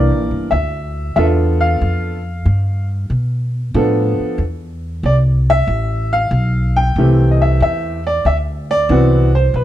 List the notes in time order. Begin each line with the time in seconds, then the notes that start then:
Already playing: C2 E3 A#3 D4 A#4 D5
0.10 A#1
0.31 G1
0.51 D2 E5
1.16 E2 B3 D4 F4 A4 E5
1.61 F5
1.81 F2
2.46 G2
3.10 B2
3.74 A2 F3 B3 D4 A4
4.19 muted upright bass stroke
4.38 E2
5.03 C2 D5
5.50 E5
5.67 A1
6.13 F5
6.31 B1
6.76 G5
6.96 C2 E3 A3 C4 G4
7.31 D#5
7.42 E5
7.60 E2 E5
8.07 D5
8.25 D2 E5
8.71 D5
8.89 C2 E3 B3 C4 F#4
9.35 C5
9.54 B1 B4